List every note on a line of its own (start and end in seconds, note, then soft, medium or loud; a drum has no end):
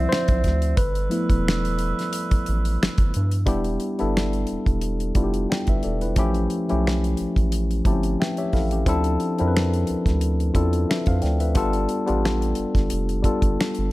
0.00 0.75 D3 medium
0.00 0.80 F3 medium
0.00 3.43 F3 medium
0.00 0.75 C4 medium
0.00 0.79 C4 medium
0.00 0.79 E4 medium
0.00 0.09 C5 medium
0.00 0.79 D5 medium
0.00 0.79 E5 loud
0.09 0.73 C5 loud
0.09 finger snap medium
0.09 snare loud
0.28 0.43 B1 medium
0.28 kick loud
0.28 closed hi-hat medium
0.44 0.75 D2 medium
0.44 kick medium
0.44 snare soft
0.44 closed hi-hat medium
0.62 closed hi-hat medium
0.77 1.09 G1 medium
0.77 3.44 G3 medium
0.77 3.44 A4 medium
0.77 3.44 B4 medium
0.77 1.41 B4 medium
0.77 3.44 E5 medium
0.77 kick loud
0.77 closed hi-hat loud
0.95 closed hi-hat soft
1.10 3.42 F3 medium
1.10 3.43 A3 medium
1.10 3.43 B3 medium
1.10 3.43 E4 medium
1.10 closed hi-hat medium
1.30 1.93 E1 medium
1.30 kick medium
1.30 closed hi-hat soft
1.48 finger snap medium
1.48 snare loud
1.65 closed hi-hat medium
1.79 closed hi-hat medium
1.99 snare soft
1.99 closed hi-hat soft
2.13 closed hi-hat medium
2.31 kick medium
2.31 closed hi-hat medium
2.46 2.78 A1 medium
2.46 closed hi-hat medium
2.65 closed hi-hat medium
2.82 2.89 G1 soft
2.82 finger snap medium
2.82 snare loud
2.98 3.13 G1 medium
2.98 kick loud
2.98 closed hi-hat medium
3.14 3.45 G2 loud
3.14 closed hi-hat medium
3.31 closed hi-hat medium
3.46 3.78 E1 medium
3.46 3.90 G3 loud
3.46 3.90 B3 medium
3.46 3.90 D4 medium
3.46 3.91 E4 loud
3.46 3.91 G4 loud
3.46 kick loud
3.46 closed hi-hat medium
3.64 closed hi-hat soft
3.80 closed hi-hat medium
3.98 4.45 G1 medium
3.98 4.98 G3 medium
3.98 4.99 B3 medium
3.98 4.99 D4 medium
3.98 4.99 E4 medium
3.98 4.99 A4 medium
3.98 closed hi-hat soft
4.17 finger snap medium
4.17 snare loud
4.33 closed hi-hat soft
4.47 closed hi-hat medium
4.51 4.58 E1 soft
4.66 5.12 E1 medium
4.66 kick medium
4.66 closed hi-hat soft
4.81 closed hi-hat medium
5.00 closed hi-hat soft
5.15 5.46 F1 medium
5.15 6.02 G3 medium
5.15 6.03 B3 medium
5.15 6.03 D4 medium
5.15 5.50 E4 medium
5.15 5.23 F4 medium
5.15 kick medium
5.15 closed hi-hat medium
5.24 5.53 G4 medium
5.34 closed hi-hat soft
5.50 5.67 D5 soft
5.50 5.67 G5 medium
5.50 finger snap medium
5.50 snare loud
5.67 5.82 G1 medium
5.67 5.83 B4 medium
5.67 5.83 E5 medium
5.67 kick medium
5.67 closed hi-hat soft
5.83 6.15 E1 medium
5.83 6.01 A4 medium
5.83 6.01 D5 medium
5.83 closed hi-hat medium
6.01 6.17 E4 soft
6.01 6.34 B4 medium
6.01 closed hi-hat soft
6.16 6.48 A1 loud
6.16 6.60 F3 loud
6.16 6.60 A3 loud
6.16 6.61 C#4 loud
6.16 6.61 E4 loud
6.16 6.61 G4 loud
6.16 kick loud
6.16 closed hi-hat medium
6.34 closed hi-hat soft
6.50 closed hi-hat medium
6.68 7.15 B1 medium
6.68 7.68 F3 medium
6.68 7.68 A3 medium
6.68 7.68 C#4 medium
6.68 7.69 E4 medium
6.68 7.69 G4 medium
6.68 closed hi-hat soft
6.87 finger snap medium
6.87 snare loud
7.04 closed hi-hat soft
7.17 7.27 A1 soft
7.17 closed hi-hat medium
7.36 7.82 A1 medium
7.36 kick medium
7.36 closed hi-hat soft
7.52 closed hi-hat medium
7.71 closed hi-hat soft
7.85 8.16 G1 medium
7.85 8.72 F3 medium
7.85 8.72 A3 medium
7.85 7.93 C4 medium
7.85 8.20 E4 medium
7.85 8.20 G4 medium
7.85 8.17 A5 medium
7.85 kick medium
7.85 closed hi-hat medium
7.93 8.23 C#4 medium
8.03 closed hi-hat medium
8.20 8.38 B4 medium
8.20 8.37 E5 medium
8.20 8.37 G5 medium
8.20 finger snap medium
8.20 snare loud
8.37 8.53 G4 medium
8.37 8.52 C#5 medium
8.37 8.52 E5 medium
8.37 closed hi-hat soft
8.53 8.84 A1 medium
8.53 8.71 E4 medium
8.53 8.71 A4 medium
8.53 8.84 F5 medium
8.53 kick medium
8.53 snare soft
8.53 open hi-hat soft
8.71 9.04 C#4 medium
8.71 9.04 G4 medium
8.71 closed hi-hat medium
8.86 9.17 D2 loud
8.86 9.30 F3 loud
8.86 9.30 C4 loud
8.86 9.30 D4 loud
8.86 9.31 E4 loud
8.86 9.31 A4 loud
8.86 kick loud
8.86 closed hi-hat medium
9.04 closed hi-hat medium
9.20 closed hi-hat medium
9.38 9.85 F2 medium
9.38 10.38 F3 medium
9.38 10.38 C4 medium
9.38 10.38 D4 medium
9.38 10.39 E4 medium
9.38 9.46 A#4 medium
9.38 closed hi-hat soft
9.47 10.42 B4 loud
9.57 finger snap medium
9.57 snare loud
9.73 closed hi-hat soft
9.87 9.97 D2 soft
9.87 closed hi-hat medium
10.06 10.51 D2 medium
10.06 kick medium
10.06 snare soft
10.06 closed hi-hat soft
10.21 closed hi-hat medium
10.40 closed hi-hat soft
10.54 10.86 E2 medium
10.54 11.41 C4 medium
10.54 11.42 D4 medium
10.54 11.42 E4 medium
10.54 11.41 F4 medium
10.54 11.42 A4 loud
10.54 kick medium
10.54 closed hi-hat medium
10.73 closed hi-hat soft
10.89 11.07 B4 medium
10.89 11.07 E5 medium
10.89 finger snap medium
10.89 snare loud
11.06 11.21 F2 medium
11.06 11.22 C5 medium
11.06 11.22 F5 medium
11.06 kick loud
11.06 closed hi-hat soft
11.22 11.58 D2 medium
11.22 11.40 D5 medium
11.22 11.40 G5 medium
11.22 snare soft
11.22 closed hi-hat medium
11.40 11.73 B4 medium
11.40 11.73 E5 medium
11.40 closed hi-hat medium
11.55 11.87 G1 loud
11.55 11.99 G3 loud
11.55 11.99 B3 loud
11.55 11.99 D4 loud
11.55 12.00 F4 loud
11.55 12.00 A4 loud
11.55 kick loud
11.55 closed hi-hat loud
11.73 closed hi-hat soft
11.89 closed hi-hat medium
12.06 12.54 A1 medium
12.06 13.06 G3 medium
12.06 13.07 B3 medium
12.06 13.07 D4 medium
12.06 13.07 F4 medium
12.06 13.07 G4 medium
12.06 closed hi-hat soft
12.25 finger snap medium
12.25 snare loud
12.42 closed hi-hat soft
12.55 12.66 G1 soft
12.55 closed hi-hat medium
12.75 12.90 G1 medium
12.75 kick medium
12.75 snare soft
12.75 closed hi-hat soft
12.90 13.22 F1 medium
12.90 closed hi-hat medium
13.09 closed hi-hat soft
13.23 13.32 G1 soft
13.23 13.92 G3 medium
13.23 13.92 B3 medium
13.23 13.92 D4 medium
13.23 13.92 F4 medium
13.23 13.92 A4 medium
13.23 kick medium
13.23 closed hi-hat medium
13.42 13.57 G1 loud
13.42 kick loud
13.42 closed hi-hat medium
13.61 finger snap medium
13.61 snare loud
13.75 13.91 G1 medium
13.75 closed hi-hat medium